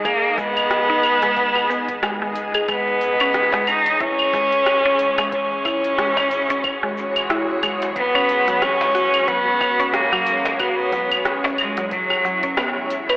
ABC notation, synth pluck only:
X:1
M:4/4
L:1/16
Q:"Swing 16ths" 1/4=91
K:C#dor
V:1 name="Synth pluck"
G z G, z2 D z G, z2 B, z G, G, z G | G, z2 C z G, z2 E z G, z2 C z G, | z2 E z G, z2 C z G, z2 E z G, z | z C z F, z2 F z F, z2 C z F, z2 |
F z F, z2 C z F, z2 F, C B, z2 B |]